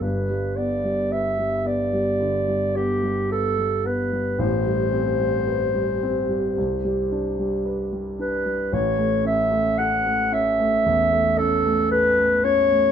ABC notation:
X:1
M:4/4
L:1/16
Q:1/4=56
K:G
V:1 name="Clarinet"
B2 d2 e2 d4 G2 A2 B2 | c12 z2 B2 | ^c2 e2 f2 e4 A2 B2 c2 |]
V:2 name="Grand piano"
[G,,,G,,] G, B, G, B G, B, G, D, G, B, G, B G, B, G, | [A,,,A,,] G, C G, B G, C G, C,, G, D G, B G, D G, | A,,, A, ^C A, A A, C A, E,, A, C A, A A, C A, |]